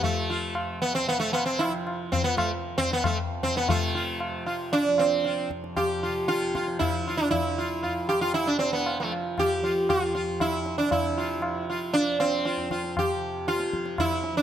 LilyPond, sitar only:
\new Staff \with { instrumentName = "Sitar" } { \time 7/4 \tempo 4 = 116 << { r8 f'8 r8 b16 c'16 b16 a16 b16 c'16 e'16 r2. r8. | f'8 f'8 r8 f'8 r4 f'8 r4 f'8 r8 f'8 r8 f'8 | r8 f'8 f'8 g'16 f'16 e'16 d'16 c'16 b8 a16 r4 f'8 r8 f'8 r4 | r8 f'8 r8 f'8 r4 f'8 f'8 r2. | } \\ { a4. r2 r8 c'16 b16 a16 r8 c'16 b16 a16 r8 c'16 b16 | a4. r8 d'8 c'4 r8 g'4 f'4 e'8. d'16 | e'4. r2 r8 g'4 f'4 e'8. d'16 | e'4. r8 d'8 c'4 r8 g'4 f'4 e'8. d'16 | } >> }